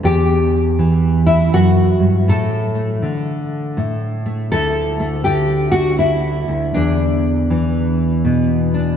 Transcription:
0.03 E2 G4
0.79 E3
1.26 E4
1.53 F#2 F#4
1.99 G2
2.28 A2 A4
2.75 A3
3.02 D3
3.77 A2
4.26 A3
4.52 D2 D3 A3 E4 A4
4.99 A3
5.24 D3 G4
5.71 F#4
5.99 E4
6.48 D2
6.74 E2 D4
7.50 E3
8.25 B2
8.74 D4

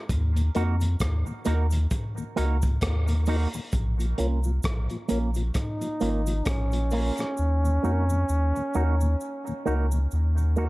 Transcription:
0.09 D#2, kick, closed hi-hat, cabasa
0.36 D#2 A#2, closed hi-hat, cabasa
0.55 F2 A#3 D#4 F#4 A#4, closed hi-hat, cabasa
0.80 D#2 A#2, closed hi-hat, cabasa
1.00 D#2, kick, cross-stick, closed hi-hat, cabasa
1.26 D#2 A#2, cabasa
1.45 D#2 A#3 D#4 F#4 A#4, closed hi-hat, cabasa
1.71 D#2 A#2, closed hi-hat, cabasa
1.91 kick, closed hi-hat, cabasa
2.18 D#2 A#2, cabasa
2.36 C#2 A#3 D#4 F#4 A#4, closed hi-hat, cabasa
2.62 D#2 A#2, kick, closed hi-hat, cabasa
2.81 D#2, kick, cross-stick, closed hi-hat, cabasa
3.08 D#2 A#2, closed hi-hat, cabasa
3.26 A#3 D#4 F#4 A#4, open hi-hat, cabasa
3.53 D#2 A#2, muted clean electric guitar stroke, cabasa
3.72 A#1, kick, closed hi-hat, cabasa
3.99 A#2 F3, closed hi-hat, cabasa
4.18 C2 A#3 C#4 F4 A#4, closed hi-hat, cabasa
4.44 A#2 F3, cabasa
4.63 A#1, kick, cross-stick, closed hi-hat, cabasa
4.90 A#2 F3, closed hi-hat, cabasa
5.08 A#1 A#3 C#4 F4 A#4, closed hi-hat, cabasa
5.34 A#2 F3, closed hi-hat, cabasa
5.54 D#4, kick, cross-stick, closed hi-hat, cabasa
5.81 A#2 F3, closed hi-hat, cabasa
6.00 G#1 A#3 C#4 F4 A#4, closed hi-hat, cabasa
6.26 A#2 F3, closed hi-hat, cabasa
6.45 A#1 C#4, kick, cross-stick, closed hi-hat, cabasa
6.72 A#2 F3, closed hi-hat, cabasa
6.91 A#3 C#4 F4 A#4, open hi-hat, cabasa
7.17 A#2 F3, cross-stick, closed hi-hat, cabasa
7.37 D#2, cabasa
7.64 D#2 A#2, cabasa
7.83 F2 A#3 D#4 F#4 A#4, cabasa
8.09 D#2 A#2, cabasa
8.29 D#2, cabasa
8.56 D#2 A#2, cabasa
8.74 D#2 A#3 D#4 F#4 A#4, cabasa
9.01 D#2 A#2, cabasa
9.21 cabasa
9.47 D#2 A#2, cabasa
9.65 C#2 A#3 D#4 F#4 A#4, cabasa
9.91 D#2 A#2, cabasa
10.11 D#2, cabasa
10.38 D#2 A#2, cabasa
10.56 A#3 D#4 F#4 A#4, cabasa

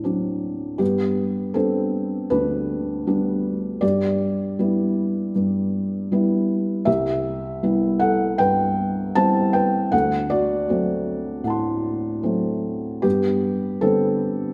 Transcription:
Already playing: A2 F#3 C4 D4 F#4 D5
0.04 F#3 C4 D4
0.78 G2 B3 G4
1.54 G3 B3 C4 D4 A4
2.30 D2 D4 B4
3.07 G3 B3 D4
3.81 G2 G4 D5
4.59 G3 B3 E4
5.36 G2
6.12 G3 B3 E4
6.85 C2 G4 E5
7.63 G3 B3 E4
7.99 A4 F#5
8.38 G2 B4 G5
9.15 G3 B3 C4 E4 A5
9.53 B4 G5
9.92 D2 A4 F#5
10.30 F#4 D5
10.69 F#3 A3 C4
11.44 A2 F#5 A5
11.50 C6
12.23 F#3 A3 C4
13.02 G2 B3 G4
13.81 D3 G3 B3 C4 A4

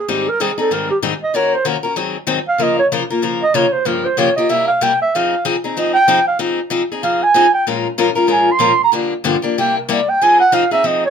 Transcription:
Already playing: G#4
0.08 G#2 D#3 G3 C4 D#4 G4 G#4
0.29 A#4
0.40 G#2 D#3 G3 C4 D#4 G#4
0.58 G3 C4 D#4 G#4 A4
0.71 G#2 D#3 G3 C4 D#4 G#4 A#4
0.91 G4
1.02 G#2 D#3 G3 C4 D#4 G#4
1.23 D#5
1.34 D#3 A#3 C#4 F#4 A#4 C#5
1.54 C5
1.65 D#3 A#3 C#4 F#4 A#4
1.83 C#4 F#4 A#4
1.96 G#2 D#3 F#3 C4 D#4 G#4
2.27 G#2 D#3 F#3 C4 D#4 G#4
2.48 F5
2.58 C#3 F3 A#3 F4 A#4
2.62 D#5
2.79 C#5
2.92 C#3 F3 A#3 F4 A#4
3.10 A#3 F4 A#4
3.22 C#3 F3 A#3 F4 A#4
3.43 D#5
3.54 C#3 F3 A#3 F4 A#4 C#5
3.72 C5
3.85 G2 C#3 F3 A#3 F4 G4 A#4
4.05 C5
4.17 G2 C#3 F3 A#3 F4 G4 C#5
4.36 F3 A#3 F4 G4 D#5
4.49 C3 G3 A#3 E4 G4 E5
4.68 F5
4.81 C3 G3 A#3 E4 G4 G5
5.02 E5
5.15 F3 C4 D#4 G#4 F5
5.45 F3 C4 D#4 G#4
5.64 C4 D#4 G#4
5.77 F3 C4 D#4 G#4 D#5
5.94 G5
6.08 F3 C4 D#4 G#4
6.28 F5
6.39 F3 C4 D#4 G#4
6.70 F3 C4 D#4 G#4
6.92 C4 D#4 G#4
7.03 F3 C4 D#4 G#4 F5
7.23 G#5
7.34 F3 C4 D#4 G#4
7.54 G5
7.67 A#2 F3 G#3 C#4 F4 A#4
7.98 A#2 F3 G#3 C#4 F4 A#4
8.15 G#3 C#4 F4 A#4
8.27 A#2 F3 G#3 C#4 F4 A#4
8.32 G#5
8.51 C6
8.59 A#2 F3 G#3 C#4 F4 A#4
8.84 A#5
8.92 G2 D3 F3 A#3 D4 G4
9.24 G2 D3 F3 A#3 D4 G4
9.42 F3 A#3 D4 G4
9.58 C3 G3 A#3 E4 G4 G5
9.78 A#4
9.89 C3 G3 A#3 E4 G4 D5
10.09 G5
10.22 F3 C4 D#4 G#4 G#5
10.40 F#5
10.52 F3 C4 D#4 G#4 F5
10.71 C4 D#4 G#4 E5
10.84 F3 C4 D#4 G#4 D#5
11.05 C#5

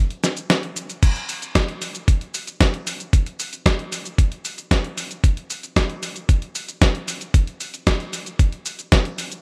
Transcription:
0.10 closed hi-hat
0.24 snare, closed hi-hat, cabasa
0.37 closed hi-hat, cabasa
0.50 snare, closed hi-hat, cabasa
0.63 closed hi-hat
0.76 closed hi-hat, cabasa
0.90 closed hi-hat, cabasa
1.03 kick, closed hi-hat, crash, cabasa
1.16 closed hi-hat
1.29 open hi-hat, cabasa
1.42 closed hi-hat, cabasa
1.55 kick, snare, closed hi-hat, cabasa
1.68 closed hi-hat
1.82 open hi-hat, cabasa
1.95 closed hi-hat, cabasa
2.08 kick, closed hi-hat, cabasa
2.21 closed hi-hat
2.34 open hi-hat, cabasa
2.47 closed hi-hat, cabasa
2.60 kick, snare, closed hi-hat, cabasa
2.74 closed hi-hat
2.87 open hi-hat, cabasa
3.00 closed hi-hat, cabasa
3.13 kick, closed hi-hat, cabasa
3.26 closed hi-hat
3.40 open hi-hat, cabasa
3.53 closed hi-hat, cabasa
3.66 kick, snare, closed hi-hat, cabasa
3.79 closed hi-hat
3.92 open hi-hat, cabasa
4.05 closed hi-hat, cabasa
4.18 kick, closed hi-hat, cabasa
4.32 closed hi-hat
4.45 open hi-hat, cabasa
4.58 closed hi-hat, cabasa
4.71 kick, snare, closed hi-hat, cabasa
4.84 closed hi-hat
4.98 open hi-hat, cabasa
5.11 closed hi-hat, cabasa
5.24 kick, closed hi-hat, cabasa
5.37 closed hi-hat
5.50 open hi-hat, cabasa
5.63 closed hi-hat, cabasa
5.76 kick, snare, closed hi-hat, cabasa
5.90 closed hi-hat
6.03 open hi-hat, cabasa
6.16 closed hi-hat, cabasa
6.29 kick, closed hi-hat, cabasa
6.42 closed hi-hat
6.55 open hi-hat, cabasa
6.69 closed hi-hat, cabasa
6.82 kick, snare, closed hi-hat, cabasa
6.95 closed hi-hat
7.08 open hi-hat, cabasa
7.21 closed hi-hat, cabasa
7.34 kick, closed hi-hat, cabasa
7.47 closed hi-hat
7.60 open hi-hat, cabasa
7.74 closed hi-hat, cabasa
7.87 kick, snare, closed hi-hat, cabasa
8.00 closed hi-hat
8.13 open hi-hat, cabasa
8.26 closed hi-hat, cabasa
8.39 kick, closed hi-hat, cabasa
8.52 closed hi-hat
8.66 open hi-hat, cabasa
8.79 closed hi-hat, cabasa
8.92 kick, snare, closed hi-hat, cabasa
9.05 closed hi-hat
9.18 open hi-hat, cabasa
9.32 closed hi-hat, cabasa

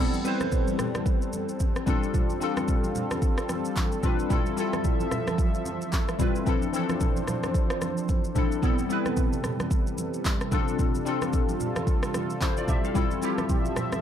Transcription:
Already playing: G3
0.00 G3 B3 C4 E4 A4
0.13 high conga, shaker
0.24 G3 C4 E4 B4 C5, shaker
0.41 cross-stick, high conga, shaker
0.52 kick, low conga, shaker
0.68 high conga, shaker
0.79 cross-stick, low conga, shaker
0.95 cross-stick, high conga, shaker
1.06 kick, shaker
1.22 shaker
1.33 high conga, shaker
1.49 shaker
1.60 kick, high conga, shaker
1.76 cross-stick, shaker
1.86 G3 C4 D4 F4 A4, kick, high conga, low conga, shaker
2.03 shaker
2.14 kick, low conga, shaker
2.30 high conga, shaker
2.40 G3 C4 D4 F4 A4, shaker
2.57 cross-stick, high conga, shaker
2.68 kick, low conga, shaker
2.84 high conga, shaker
2.95 low conga, shaker
3.11 cross-stick, high conga, shaker
3.22 kick, shaker
3.38 cross-stick, shaker
3.49 cross-stick, high conga, shaker
3.65 shaker
3.76 kick, clap, high conga, shaker
3.92 shaker
4.02 G3 C4 D4 F4 B4, kick, high conga, low conga, shaker
4.19 shaker
4.29 F3 G3 C4 E4 F4 A4 E5, kick, low conga, shaker
4.46 high conga, shaker
4.57 G3 C4 E4 F4 A4, shaker
4.73 cross-stick, high conga, shaker
4.84 kick, low conga, shaker
5.00 high conga, shaker
5.11 cross-stick, low conga, shaker
5.27 cross-stick, high conga, shaker
5.38 kick, shaker
5.54 shaker
5.66 high conga, shaker
5.81 shaker
5.93 kick, clap, high conga, shaker
6.08 cross-stick, shaker
6.19 G3 C4 E4 F4 B4, kick, high conga, low conga, shaker
6.35 shaker
6.46 F3 C4 D4 E4 A4 C5, kick, low conga, shaker
6.62 high conga, shaker
6.73 E3 C4 D4 E4 A4, shaker
6.79 F3
6.89 cross-stick, high conga, shaker
7.01 kick, low conga, shaker
7.16 high conga, shaker
7.28 cross-stick, low conga, shaker
7.43 cross-stick, high conga, shaker
7.54 kick, shaker
7.70 cross-stick, shaker
7.82 cross-stick, high conga, shaker
7.97 shaker
8.09 kick, high conga, shaker
8.24 shaker
8.35 F3 C4 D4 E4 A4, kick, high conga, low conga, shaker
8.52 shaker
8.62 C3 G3 B3 C4 E4 A4, kick, low conga, shaker
8.78 high conga, shaker
8.89 G3 B3 C4 E4 B4, shaker
9.06 cross-stick, high conga, shaker
9.17 kick, low conga, shaker
9.32 high conga, shaker
9.44 cross-stick, low conga, shaker
9.60 cross-stick, high conga, shaker
9.71 kick, shaker
9.87 shaker
9.98 high conga, shaker
10.14 shaker
10.25 kick, clap, high conga, shaker
10.41 cross-stick, shaker
10.51 G3 C4 D4 F4 A4, kick, high conga, low conga, shaker
10.68 shaker
10.79 kick, low conga, shaker
10.94 high conga, shaker
11.05 G3 C4 D4 F4 A4, shaker
11.22 cross-stick, high conga, shaker
11.33 kick, low conga, shaker
11.49 high conga, shaker
11.60 low conga, shaker
11.76 cross-stick, high conga, shaker
11.87 kick, shaker
12.03 cross-stick, shaker
12.14 cross-stick, high conga, shaker
12.30 shaker
12.41 E4 C5, kick, clap, high conga, shaker
12.57 F4 D5, shaker
12.68 G4 E5, kick, high conga, low conga, shaker
12.84 A4 F5, shaker
12.94 F3 G3 C4 E4 F4 A4 E5, kick, low conga, shaker
13.10 high conga, shaker
13.21 G3 C4 E4 F4 G4, shaker
13.38 cross-stick, high conga, shaker
13.49 kick, low conga, shaker
13.65 high conga, shaker
13.76 cross-stick, low conga, shaker
13.92 cross-stick, high conga, shaker

